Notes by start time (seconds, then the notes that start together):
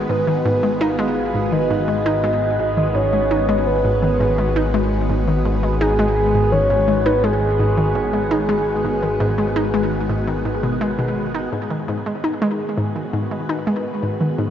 Already playing: D#3 G#3 B3 F#4 G#4 B4
0.09 G#1 G#2 B4
0.27 D#3
0.45 G#2
0.63 G#3
0.81 D#4 F5
0.99 G#3
1.34 G#2
1.52 D#3 D#5
1.70 G#2
1.88 G#3
2.06 D#4
2.24 G#3
2.59 G#2
2.77 D#3
2.95 G#2 C#5
3.13 G#3
3.31 D#4
3.49 G#3
3.67 B4
3.85 G#2
4.02 D#3
4.20 G#2
4.38 G#3
4.56 D#4
4.74 G#3
5.10 G#2
5.28 D#3
5.45 G#2
5.63 G#3
5.81 D#4 G#4
5.99 G#3
6.34 G#2
6.52 D#3 C#5
6.70 G#2
6.88 G#3
7.06 D#4 B4
7.23 G#3 G#4
7.60 G#2
7.77 D#3
7.95 G#2
8.13 G#3
8.31 D#4
8.49 G#3
8.85 G#2
9.03 D#3
9.20 G#2
9.38 G#3
9.56 D#4
9.74 G#3
10.09 G#2
10.27 D#3
10.45 G#2
10.63 B2
10.81 G#3
10.99 B2
11.34 D#4
11.52 G#2 D#3 F#5
11.65 G#3
11.70 D#3
11.88 G#2
12.06 G#3
12.17 B3
12.24 D#4
12.42 G#3
12.78 G#2
12.83 F#4
12.96 D#3
13.13 G#2 B4
13.31 G#3
13.49 D#4
13.67 G#3
14.03 G#2
14.21 D#3
14.38 G#2